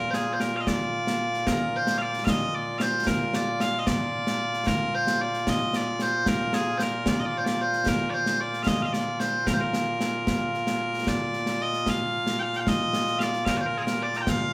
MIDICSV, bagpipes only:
0, 0, Header, 1, 2, 480
1, 0, Start_track
1, 0, Key_signature, -2, "major"
1, 0, Tempo, 533333
1, 1321, Time_signature, 6, 3, 24, 8
1, 13079, End_track
2, 0, Start_track
2, 0, Title_t, "Bagpipes"
2, 0, Program_c, 0, 109
2, 0, Note_on_c, 0, 46, 89
2, 0, Note_on_c, 0, 58, 89
2, 0, Note_on_c, 0, 65, 89
2, 0, Note_on_c, 0, 70, 103
2, 93, Note_off_c, 0, 70, 0
2, 93, Note_on_c, 0, 72, 84
2, 127, Note_off_c, 0, 72, 0
2, 127, Note_on_c, 0, 68, 84
2, 298, Note_off_c, 0, 68, 0
2, 298, Note_on_c, 0, 72, 57
2, 363, Note_off_c, 0, 72, 0
2, 363, Note_on_c, 0, 70, 85
2, 507, Note_off_c, 0, 70, 0
2, 507, Note_on_c, 0, 77, 69
2, 544, Note_off_c, 0, 77, 0
2, 544, Note_on_c, 0, 75, 69
2, 608, Note_off_c, 0, 75, 0
2, 608, Note_on_c, 0, 74, 94
2, 1324, Note_off_c, 0, 74, 0
2, 1324, Note_on_c, 0, 70, 93
2, 1586, Note_off_c, 0, 70, 0
2, 1586, Note_on_c, 0, 72, 91
2, 1780, Note_off_c, 0, 72, 0
2, 1780, Note_on_c, 0, 77, 98
2, 1815, Note_off_c, 0, 77, 0
2, 1815, Note_on_c, 0, 74, 98
2, 2021, Note_off_c, 0, 74, 0
2, 2021, Note_on_c, 0, 77, 99
2, 2058, Note_off_c, 0, 77, 0
2, 2058, Note_on_c, 0, 75, 99
2, 2293, Note_off_c, 0, 75, 0
2, 2293, Note_on_c, 0, 74, 90
2, 2503, Note_off_c, 0, 74, 0
2, 2503, Note_on_c, 0, 77, 94
2, 2533, Note_off_c, 0, 77, 0
2, 2533, Note_on_c, 0, 72, 94
2, 2761, Note_off_c, 0, 72, 0
2, 2761, Note_on_c, 0, 70, 99
2, 3014, Note_off_c, 0, 70, 0
2, 3014, Note_on_c, 0, 74, 101
2, 3248, Note_off_c, 0, 74, 0
2, 3248, Note_on_c, 0, 77, 112
2, 3409, Note_off_c, 0, 77, 0
2, 3409, Note_on_c, 0, 75, 76
2, 3482, Note_off_c, 0, 75, 0
2, 3482, Note_on_c, 0, 74, 103
2, 4204, Note_off_c, 0, 74, 0
2, 4204, Note_on_c, 0, 70, 104
2, 4452, Note_off_c, 0, 70, 0
2, 4452, Note_on_c, 0, 72, 100
2, 4691, Note_off_c, 0, 72, 0
2, 4691, Note_on_c, 0, 74, 96
2, 4943, Note_off_c, 0, 74, 0
2, 4943, Note_on_c, 0, 75, 93
2, 5182, Note_off_c, 0, 75, 0
2, 5182, Note_on_c, 0, 74, 98
2, 5420, Note_off_c, 0, 74, 0
2, 5420, Note_on_c, 0, 72, 92
2, 5650, Note_off_c, 0, 72, 0
2, 5650, Note_on_c, 0, 70, 107
2, 5889, Note_off_c, 0, 70, 0
2, 5889, Note_on_c, 0, 68, 90
2, 6100, Note_off_c, 0, 68, 0
2, 6100, Note_on_c, 0, 72, 85
2, 6138, Note_off_c, 0, 72, 0
2, 6138, Note_on_c, 0, 70, 85
2, 6373, Note_off_c, 0, 70, 0
2, 6373, Note_on_c, 0, 74, 94
2, 6480, Note_off_c, 0, 74, 0
2, 6480, Note_on_c, 0, 75, 68
2, 6528, Note_off_c, 0, 75, 0
2, 6528, Note_on_c, 0, 74, 99
2, 6641, Note_off_c, 0, 74, 0
2, 6641, Note_on_c, 0, 72, 65
2, 6702, Note_off_c, 0, 72, 0
2, 6702, Note_on_c, 0, 74, 86
2, 6854, Note_off_c, 0, 74, 0
2, 6854, Note_on_c, 0, 72, 85
2, 7092, Note_off_c, 0, 72, 0
2, 7092, Note_on_c, 0, 70, 97
2, 7288, Note_off_c, 0, 70, 0
2, 7288, Note_on_c, 0, 74, 88
2, 7326, Note_off_c, 0, 74, 0
2, 7326, Note_on_c, 0, 72, 88
2, 7567, Note_off_c, 0, 72, 0
2, 7567, Note_on_c, 0, 74, 93
2, 7764, Note_off_c, 0, 74, 0
2, 7764, Note_on_c, 0, 77, 86
2, 7804, Note_off_c, 0, 77, 0
2, 7804, Note_on_c, 0, 75, 86
2, 7937, Note_off_c, 0, 75, 0
2, 7937, Note_on_c, 0, 77, 68
2, 7966, Note_off_c, 0, 77, 0
2, 7966, Note_on_c, 0, 75, 68
2, 8035, Note_off_c, 0, 75, 0
2, 8035, Note_on_c, 0, 74, 82
2, 8280, Note_off_c, 0, 74, 0
2, 8280, Note_on_c, 0, 72, 87
2, 8521, Note_off_c, 0, 72, 0
2, 8521, Note_on_c, 0, 70, 80
2, 8578, Note_off_c, 0, 70, 0
2, 8578, Note_on_c, 0, 72, 72
2, 8644, Note_off_c, 0, 72, 0
2, 8644, Note_on_c, 0, 70, 76
2, 9973, Note_off_c, 0, 70, 0
2, 9973, Note_on_c, 0, 74, 114
2, 10458, Note_off_c, 0, 74, 0
2, 10458, Note_on_c, 0, 75, 109
2, 10702, Note_off_c, 0, 75, 0
2, 10702, Note_on_c, 0, 77, 109
2, 11154, Note_off_c, 0, 77, 0
2, 11154, Note_on_c, 0, 79, 100
2, 11183, Note_off_c, 0, 79, 0
2, 11183, Note_on_c, 0, 77, 100
2, 11309, Note_off_c, 0, 77, 0
2, 11309, Note_on_c, 0, 79, 83
2, 11344, Note_off_c, 0, 79, 0
2, 11344, Note_on_c, 0, 77, 83
2, 11412, Note_off_c, 0, 77, 0
2, 11412, Note_on_c, 0, 75, 112
2, 11867, Note_off_c, 0, 75, 0
2, 11867, Note_on_c, 0, 77, 106
2, 11901, Note_off_c, 0, 77, 0
2, 11901, Note_on_c, 0, 74, 106
2, 12105, Note_off_c, 0, 74, 0
2, 12105, Note_on_c, 0, 77, 85
2, 12137, Note_off_c, 0, 77, 0
2, 12137, Note_on_c, 0, 70, 85
2, 12213, Note_off_c, 0, 70, 0
2, 12213, Note_on_c, 0, 74, 65
2, 12248, Note_off_c, 0, 74, 0
2, 12248, Note_on_c, 0, 72, 65
2, 12291, Note_off_c, 0, 72, 0
2, 12291, Note_on_c, 0, 70, 96
2, 12401, Note_off_c, 0, 70, 0
2, 12401, Note_on_c, 0, 68, 61
2, 12444, Note_off_c, 0, 68, 0
2, 12444, Note_on_c, 0, 70, 91
2, 12624, Note_off_c, 0, 70, 0
2, 12624, Note_on_c, 0, 74, 104
2, 12752, Note_off_c, 0, 74, 0
2, 12752, Note_on_c, 0, 82, 79
2, 12789, Note_off_c, 0, 82, 0
2, 12789, Note_on_c, 0, 79, 79
2, 12864, Note_off_c, 0, 79, 0
2, 12864, Note_on_c, 0, 77, 125
2, 13079, Note_off_c, 0, 46, 0
2, 13079, Note_off_c, 0, 58, 0
2, 13079, Note_off_c, 0, 65, 0
2, 13079, Note_off_c, 0, 77, 0
2, 13079, End_track
0, 0, End_of_file